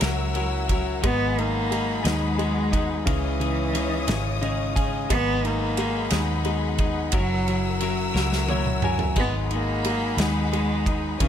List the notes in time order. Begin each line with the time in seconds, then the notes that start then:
Already playing: F#3 A#4 F#5 E6
0.01 C#2 F#3 C#4 E4 A#4, snare, ride
0.34 F#3 C#4 E4 A#4, ride
0.68 F#3 C#4 E4 A#4, kick, ride
1.02 G#1 G#2 D#3 F#3 G#3 B3 D#4 G#4 B5, kick, ride
1.36 F#3 A#3 D#4 G#4, ride
1.71 F#3 G#3 D#4 G#4, ride
2.04 D#2 G#2 D#3 F#3 G#3 B3 D#4 G#4, snare, ride
2.38 F#3 G#3 B3 D#4 G#4, ride
2.72 F#3 B3 D#4 G#4, kick, ride
3.05 C#2 C#3 E3 G#3 C#4 D#4 G#4 C#5 D#5 D#6, kick, ride
3.39 C#3 G#3 C#4 D#4 G#4, ride
3.73 C#3 G#3 C#4 D#4 G#4, ride
4.07 G#1 C#3 E3 G#3 C#4 D#4 G#4, snare, ride
4.41 C#3 G#3 C#4 D#4 G#4 D#5, ride
4.76 C#3 G#3 C#4 D#4 G#4 G#5, kick, ride
5.09 G#1 G#2 D#3 F#3 G#3 B3 D#4 G#4 F#5 B5, kick, ride
5.42 F#3 D#4 G#4, ride
5.46 A#3
5.77 F#3 G#3 D#4 G#4, ride
6.10 D#2 G#2 D#3 F#3 G#3 B3 D#4 G#4, snare, ride
6.44 F#3 G#3 B3 D#4 G#4, ride
6.78 F#3 B3 D#4 G#4, kick, ride
7.12 F#1 F#3 C#4 E4 A#4 E6, kick, ride
7.47 F#3 C#4 E4 A#4, ride
7.80 F#3 C#4 E4 A#4, ride
8.14 C#2 F#3 C#4 E4 A#4, snare
8.33 snare
8.48 F#3 C#4 E4 A#4 C#5, high tom
8.66 mid tom
8.82 F#3 C#4 E4 A#4 G#5, mid tom
8.99 floor tom
9.16 G#1 G#2 D#3 F#3 G#3 B3 D#4 G#4 F#5 B5, kick, splash
9.50 F#3 A#3 D#4 G#4, ride
9.84 F#3 G#3 D#4 G#4, ride
10.17 D#2 G#2 D#3 F#3 G#3 B3 D#4 G#4, snare, ride
10.52 F#3 G#3 B3 D#4 G#4, ride
10.86 F#3 B3 D#4 G#4, kick, ride
11.19 C#2 C#3 E3 G#3 C#4 D#4 G#4 C#5 D#5 D#6, kick, ride